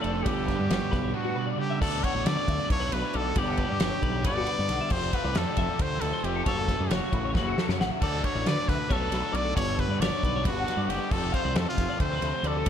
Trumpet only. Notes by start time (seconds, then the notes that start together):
0.01 A4
0.23 G4
1.15 F#4
1.60 G4
1.82 A4
2.04 C#5
2.26 D5
2.71 C#5
2.93 B4
3.16 A4
3.39 G4
4.27 D5
4.92 C5
5.14 B4
5.38 A4
5.82 C5
6.01 A4
6.24 G4
6.46 A4
6.91 F#4
7.35 F#4
8.01 A4
8.24 C#5
8.47 D5
8.69 B4
8.92 A4
9.36 D5
9.56 C#5
9.80 B4
10.01 D5
10.47 F#4
10.89 G4
11.12 A4
11.34 C5
11.57 A4
11.69 F4
12.01 C5
12.47 A4